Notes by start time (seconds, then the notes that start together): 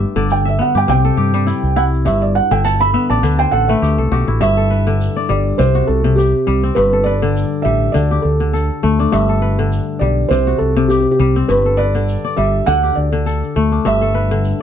Already playing: G2 A3 G4 A4 B4 E5
0.16 G1 D3 D5
0.30 G5, shaker
0.45 E5, shaker
0.59 B3 F#5
0.75 G2 G4 G5
0.88 C2 C3 G5, shaker
1.05 A4
1.17 G2 G4
1.34 G3
1.47 E4, shaker
1.63 C2, shaker
1.76 E4 F#5
1.93 shaker
2.05 G1 G2 E5, shaker
2.22 D5
2.35 F#5
2.51 G1 D3 E5 G5, shaker
2.64 F#5 A5, shaker
2.80 E5 B5
2.94 B3 E5
3.10 A1 D5 A5, shaker
3.23 D2 D3 B4, shaker
3.39 C5 G5, shaker
3.51 A1 A4 F#5
3.68 A3 B4 E5
3.82 D2 G4, shaker
3.98 C2 A4
4.12 B1 F#4 G4, shaker
4.28 A1 E4
4.41 G1 G2 E5, shaker
4.57 A4
4.71 B4, shaker
4.87 D3, shaker
5.01 shaker
5.16 D5
5.29 G1 G3 D5
5.58 C2 C3 C5, shaker
5.75 F#4, shaker
5.87 C2 A4
6.04 C3
6.16 G4, shaker
6.47 C2 G3
6.63 C4, shaker
6.75 G1 G2 B4, shaker
6.93 A4
7.04 B4 D5, shaker
7.22 D3, shaker
7.36 shaker
7.62 A1 G3 E5
7.92 D2 D3 D5, shaker
8.11 G4
8.22 D2 A4
8.40 D3
8.53 A4, shaker
8.83 D2 A3
8.99 D4
9.12 G1 G2 E5, shaker
9.29 A4
9.42 B4, shaker
9.59 D3, shaker
9.72 shaker
9.99 B1 G3 D5
10.29 C2 C3 C5, shaker
10.47 F#4, shaker
10.58 C2 A4
10.76 C3
10.88 G4, shaker
11.00 G4
11.11 G4
11.19 C2 G3
11.36 C4, shaker
11.48 G1 G2 B4, shaker
11.66 A4
11.77 B4 D5, shaker
11.95 D3
12.09 shaker
12.24 D5
12.37 G1 G3 E5, shaker
12.66 D2 D3 F#5, shaker
12.83 G4
12.95 D2 D5
13.12 D3
13.26 A4, shaker
13.44 shaker
13.56 D2 A3
13.72 D4
13.85 G1 G2 E5, shaker
14.01 A4
14.14 B4, shaker
14.31 D3, shaker
14.45 shaker